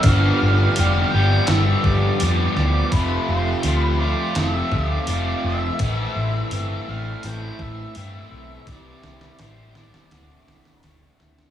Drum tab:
HH |o---o---o---o---|o---o---o---o---|o---o---o---o---|o---o---o---o---|
SD |--------o-----o-|--------o-------|----------------|o-ooo-ooo-ooo-oo|
BD |o---------o-----|o---------o-----|o---------o-----|o---------------|